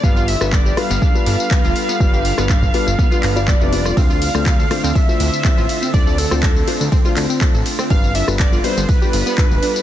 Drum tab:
RD |----------------|----------------|x-x-x-x-x-x-x-x-|x-x-x-x-x-x-x-x-|
HH |--o---o---o---o-|--o---o---o---o-|--o---o---o---o-|--o---o---o---o-|
TB |xx-xxx-xxx-xxx-x|xx-xxx-xxx-xxx-x|xx-xxx-xxx-xxx-x|xx-xxx-xxx-xxx-x|
CP |----x-------x---|----x-----x-x---|----x-------x---|----x-----x-x---|
SD |---r--r---------|---r-----------r|---r--r---------|---r-----------r|
BD |o---o---o---o---|o---oo--o---o---|o---o---o---o---|o---o---o---o---|

RD |x-x-x-x-x-x-x-x-|
HH |--o---o---o---o-|
TB |xx-xxx-xxx-xxx-x|
CP |----x-------x---|
SD |---r------------|
BD |o---o---o---o---|